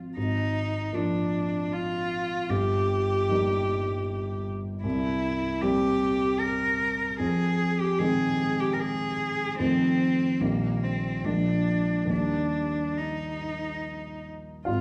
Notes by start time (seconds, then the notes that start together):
Already playing: F3 C4 F4
0.17 G#1 D#4
0.93 F3 A#3 D4 F4
1.73 F4
2.49 G1 G4
3.29 G3 A#3 D#4
4.83 C2 E4
5.62 G3 A#3 C4 G4
6.40 A#4
7.19 F2 G#4
7.80 G4
7.99 D#3 G#3 C4 G#4
8.60 G4
8.73 A#4
8.80 G#4
9.58 F2 D#3 A3 C4
10.40 A#1 D#3 G3 A#3
10.83 C4
11.24 A#1 F3 G#3 A#3 D4
12.05 D#2 D#3 G3 A#3
12.11 D4
12.97 D#4
14.65 G#1 F4 F5